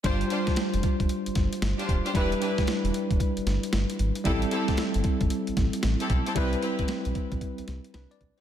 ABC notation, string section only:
X:1
M:4/4
L:1/16
Q:"Swing 16ths" 1/4=114
K:Gmix
V:1 name="String section"
[DFGc] z [DFGc] z8 z2 [DFGc] z [DFGc] | [DEGB] z [DEGB] z12 z | [CEGA] z [CEGA] z8 z2 [CEGA] z [CEGA] | [CEGB] z [CEGB] z12 [CEGB] |]